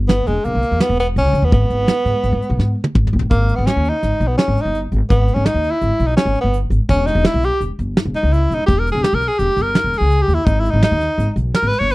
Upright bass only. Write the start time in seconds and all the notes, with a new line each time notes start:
Already playing: G1
0.28 E1
0.45 E1
0.55 B1
0.71 E2
0.89 E1
1.16 C#2
1.33 C#2
1.42 D#2
1.52 G#1
1.70 G#1
2.05 G#2
2.24 G#1
2.32 G#2
2.50 B1
2.59 G#2
2.95 G#1
3.13 G1
3.21 G#1
3.31 G#1
3.58 G#1
3.76 D#2
4.03 G#1
4.20 B1
4.48 G#1
4.65 G1
4.92 G#1
5.10 G#1
5.36 G#1
5.54 D#2
5.82 G#1
6.00 B1
6.25 G#1
6.44 G1
6.70 G#1
6.89 E1
7.15 E1
7.34 B1
7.61 E1
7.79 G1
8.05 E1
8.23 C#2
8.50 E1
8.68 E1
8.95 E1
9.13 B1
9.39 E1
9.57 G1
9.84 E1
10.01 C#2
10.28 D#2
10.47 G#1
10.73 G#1
10.91 D#2
11.18 G#1
11.36 B1
11.63 G#1
11.81 G1